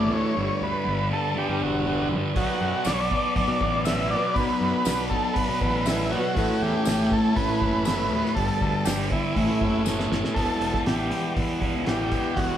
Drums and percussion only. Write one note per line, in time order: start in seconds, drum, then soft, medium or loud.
2.36 kick loud
2.36 open hi-hat medium
2.85 snare loud
2.85 open hi-hat medium
2.85 tambourine loud
3.11 kick medium
3.36 kick loud
3.36 open hi-hat medium
3.61 kick medium
3.85 snare loud
3.85 open hi-hat medium
3.85 tambourine medium
4.36 kick loud
4.36 open hi-hat medium
4.85 snare loud
4.85 open hi-hat medium
4.85 tambourine loud
5.11 kick medium
5.36 kick loud
5.36 open hi-hat medium
5.61 kick medium
5.86 snare loud
5.86 open hi-hat medium
5.86 tambourine medium
6.37 kick loud
6.37 open hi-hat medium
6.85 snare loud
6.85 open hi-hat medium
6.85 tambourine loud
7.12 kick loud
7.36 kick loud
7.36 open hi-hat medium
7.62 kick medium
7.85 snare loud
7.85 open hi-hat medium
7.85 tambourine medium
8.25 snare soft
8.36 kick loud
8.36 open hi-hat medium
8.61 kick medium
8.85 snare loud
8.85 open hi-hat medium
8.85 tambourine loud
9.11 kick medium
9.36 kick loud
9.36 open hi-hat medium
9.61 kick medium
9.86 snare medium
9.86 tambourine medium
9.99 snare medium
10.12 snare loud
10.24 snare medium
10.36 kick loud
10.36 open hi-hat medium
10.61 open hi-hat medium
10.74 kick medium
10.74 snare soft
10.86 snare loud
10.86 open hi-hat medium
11.11 open hi-hat medium
11.37 kick loud
11.37 open hi-hat medium
11.62 kick medium
11.62 open hi-hat medium
11.86 snare loud
11.86 open hi-hat medium
12.12 kick medium
12.12 open hi-hat medium
12.37 kick medium
12.37 open hi-hat medium